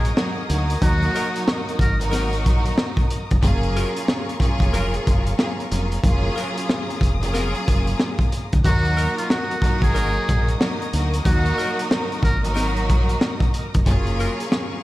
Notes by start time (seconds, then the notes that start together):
Already playing: A#1 F#3 A#3 D#4 F#4 G#4 A#4 D#5 A#5 D#6
0.05 closed hi-hat
0.15 F#3 A#3 D#4 F#4 A#4, cross-stick, snare
0.49 D2 F#3 A#3 D#4 F#4 A#4, closed hi-hat
0.70 closed hi-hat
0.81 D#2 F#3 A#3 D#4 F#4 A#4, kick, closed hi-hat
1.02 closed hi-hat
1.15 F#3 D#4 A#4, closed hi-hat
1.36 closed hi-hat
1.48 cross-stick, snare
1.68 closed hi-hat
1.79 G#1 A#4, kick, closed hi-hat
2.00 F#3 A#3 D#4 F#4 A#4, closed hi-hat
2.11 F#3 D#4 A#4, snare, closed hi-hat
2.33 closed hi-hat
2.46 A#1, kick, closed hi-hat
2.65 closed hi-hat
2.78 cross-stick, snare
2.97 kick, closed hi-hat
3.10 closed hi-hat
3.31 F1, kick, closed hi-hat
3.42 F#1 F#3 A#3 C#4 F4 G#4 F5 C#6, kick, closed hi-hat
3.63 closed hi-hat
3.76 F#3 F4 A#4, closed hi-hat
3.96 closed hi-hat
4.08 cross-stick, snare
4.29 closed hi-hat
4.40 F#3 A#3 C#4 F4 G#4, kick, closed hi-hat
4.60 F1, kick, closed hi-hat
4.74 F#3 F4 A#4, closed hi-hat
4.94 closed hi-hat
5.07 F#1, kick, closed hi-hat
5.26 closed hi-hat
5.38 F#3 A#3 C#4 F4 G#4, cross-stick, snare
5.60 closed hi-hat
5.70 F1 F#3 A#3 C#4 F4 G#4, closed hi-hat
5.92 closed hi-hat
6.03 F#1 F#3 A#3 C#4 F4 G#4 D#6, kick, closed hi-hat
6.36 F#3 F4 A#4, closed hi-hat
6.58 closed hi-hat
6.69 cross-stick, snare
6.90 closed hi-hat
7.01 F1, kick, closed hi-hat
7.22 F#3 A#3 C#4 F4 G#4, closed hi-hat
7.34 F#3 F4 A#4, snare, closed hi-hat
7.55 closed hi-hat
7.68 F#1, kick, closed hi-hat
7.87 closed hi-hat
8.00 cross-stick, snare
8.19 kick, closed hi-hat
8.32 closed hi-hat
8.53 D2, kick, closed hi-hat
8.64 D#2 F#3 A#3 D#4 F#4 A#4 D#5 A#5 D#6, kick, closed hi-hat
8.85 closed hi-hat
8.97 F#3 D#4 A#4, closed hi-hat
9.17 F4, closed hi-hat
9.30 F#4, cross-stick, snare
9.51 closed hi-hat
9.62 F#3 A#3 D#4 F#4 A#4, kick, closed hi-hat
9.82 G#1 G#4, kick, closed hi-hat
9.95 F#3 D#4 A#4, closed hi-hat
10.29 A#1, kick, closed hi-hat
10.48 closed hi-hat
10.59 F#3 A#3 D#4 F#4 A#4, cross-stick, snare
10.82 closed hi-hat
10.92 D2 F#3 A#3 D#4 F#4 A#4, closed hi-hat
11.13 closed hi-hat
11.25 D#2 F#3 A#3 D#4 F#4 A#4, kick, closed hi-hat
11.46 closed hi-hat
11.59 F#3 D#4 A#4, closed hi-hat
11.79 closed hi-hat
11.91 cross-stick, snare
12.12 closed hi-hat
12.23 G#1 A#4, kick, closed hi-hat
12.43 F#3 A#3 D#4 F#4 A#4, closed hi-hat
12.54 F#3 D#4 A#4, snare, closed hi-hat
12.76 closed hi-hat
12.90 A#1, kick, closed hi-hat
13.09 closed hi-hat
13.21 cross-stick, snare
13.40 kick, closed hi-hat
13.54 closed hi-hat
13.74 F1, kick, closed hi-hat
13.86 F#1 F#3 A#3 C#4 F4 G#4 F5 C#6, kick, closed hi-hat
14.07 closed hi-hat
14.20 F#3 F4 A#4, closed hi-hat
14.40 closed hi-hat
14.52 cross-stick, snare